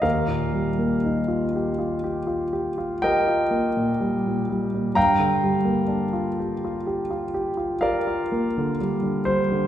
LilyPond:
\new Staff \with { instrumentName = "Grand piano" } { \time 5/4 \key ees \major \tempo 4 = 62 << { <bes' f''>2. <bes' ees'' g''>2 | <f'' g'' bes''>2. <bes' d'' f''>4 r8 c''8 | } \\ { ees,16 bes,16 g16 bes16 ees'16 f'16 g'16 f'16 g'16 f'16 g'16 f'16 g'16 f'16 bes16 bes,16 g16 bes,16 g16 bes,16 | g,16 d16 g16 bes16 d'16 f'16 g'16 f'16 g'16 f'16 g'16 f'16 g'16 f'16 bes16 d16 g16 d16 g16 d16 | } >> }